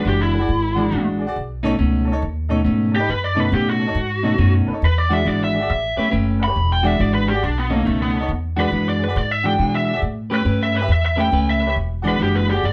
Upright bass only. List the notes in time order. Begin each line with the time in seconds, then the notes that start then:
0.05 F#1
0.49 G#1
0.92 A1
1.36 B1
1.79 C#2
2.22 D#2
2.66 G#2
3.09 F#2
3.52 A2
3.95 G#2
4.38 F#2
4.67 muted upright bass stroke
4.82 E2
5.26 G#1
5.70 A1
5.98 muted upright bass stroke
6.13 F#1
6.56 E1
7.00 G#1
7.44 B1
7.87 C#2
8.29 E2
8.71 F#2
9.16 G#2
9.59 B2
10.02 A2
10.45 G2
10.88 E2
11.32 C#2
11.76 E1
12.20 F#1
12.64 G#1